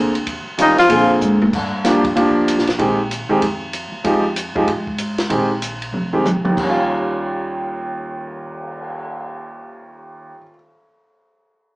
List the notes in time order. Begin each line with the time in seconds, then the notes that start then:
Already playing: D2 D3 A#3 C4 G#4
0.15 ride
0.26 D#2, kick, ride
0.47 muted upright bass stroke
0.58 F2 D#3 G3 C#4 D#4 F4, kick, hi-hat pedal, ride
0.77 F3 F4, snare, ride
0.89 A#2 D3 A#3 C4 G#4, kick, ride
1.21 G#2, hi-hat pedal
1.42 high tom
1.53 G2, kick, crash
1.84 F3 A#3 D4 G4, snare, hi-hat pedal, ride
2.04 kick, ride
2.16 D2 F3 A#3 D4 G4, kick, ride
2.48 hi-hat pedal, ride
2.58 A#1, snare
2.67 A1, snare, ride
2.78 A#1 D#3 G#3 C4 G4, kick, ride
3.11 hi-hat pedal, ride
3.29 D#3 G#3 C4 G4, muted upright bass stroke
3.42 F2, kick, ride
3.73 hi-hat pedal, ride
3.92 D#2
4.04 F2 F3 G#3 D#4 G4, kick, ride
4.36 hi-hat pedal, ride
4.55 F#2 F3 G#3 D#4 G4, kick
4.68 G#2, kick, ride
4.87 kick
4.98 hi-hat pedal, ride
5.18 snare, ride
5.30 A#1 D#3 G#3 C4 G4, kick, ride
5.62 hi-hat pedal, ride
5.82 ride
5.92 F1, mid tom
6.13 D#3 G#3 C4 G4
6.25 hi-hat pedal, mid tom
6.44 D#2, muted upright bass stroke, mid tom
6.51 D#3
6.57 D#2 G3, kick, crash
6.63 C#4
6.70 F4
6.77 cymbal swell